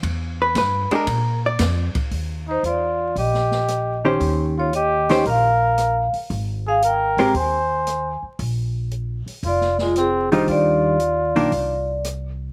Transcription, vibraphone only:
2.51 2.65 C5 medium
2.68 3.15 D5 medium
3.19 4.02 D#5 medium
4.60 4.74 C#5 medium
4.75 5.23 D#5 medium
5.30 6.12 F5 medium
6.68 6.83 F5 medium
6.87 7.33 G5 medium
7.38 8.21 G#5 medium
9.48 9.81 D5 medium
9.82 9.97 F4 medium
9.99 10.33 G#4 medium
10.33 10.48 C5 medium
10.51 12.02 D5 medium

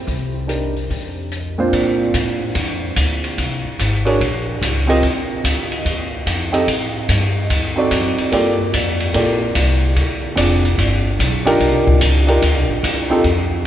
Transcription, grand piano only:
0.47 0.72 D4 soft
0.47 0.73 D#4 soft
0.47 0.73 G4 soft
0.47 0.73 A#4 soft
1.58 2.11 A#2 medium
1.58 2.11 C4 medium
1.58 2.11 D4 medium
1.58 2.11 F4 medium
1.58 2.12 C5 medium
4.05 4.18 D4 medium
4.05 4.18 F#4 medium
4.05 4.19 G#4 medium
4.05 4.19 A#4 medium
4.05 4.19 C#5 medium
4.87 5.00 C4 medium
4.87 5.01 F4 medium
4.87 5.01 G4 medium
4.87 5.01 A#4 medium
4.87 5.02 D#5 medium
6.52 6.65 C4 medium
6.52 6.65 D#4 medium
6.52 6.66 G4 medium
6.52 6.66 A4 medium
6.52 6.66 D#5 medium
7.76 8.28 C4 medium
7.76 8.29 D#4 medium
7.76 8.29 F#4 medium
7.76 8.29 A4 medium
7.76 8.30 D5 medium
8.32 8.56 A#3 medium
8.32 8.56 F4 medium
8.32 8.57 G4 medium
8.32 8.57 A4 medium
8.32 8.57 D5 medium
9.14 9.38 A#3 medium
9.14 9.39 F4 soft
9.14 9.39 G4 soft
9.14 9.39 A4 medium
9.14 9.39 D5 medium
10.36 10.61 C4 medium
10.36 10.61 D4 medium
10.36 10.61 F4 medium
10.36 10.61 G#4 soft
10.36 10.62 D5 medium
11.45 11.98 D4 medium
11.45 11.98 D#4 medium
11.45 11.98 F4 medium
11.45 11.98 G4 medium
11.45 11.99 A#4 medium
12.27 12.40 D4 medium
12.27 12.40 D#4 medium
12.27 12.41 F4 medium
12.27 12.41 G4 medium
12.27 12.41 A#4 medium
13.10 13.22 C4 medium
13.10 13.23 D#4 medium
13.10 13.23 F4 medium
13.10 13.23 G4 medium
13.10 13.23 A4 medium

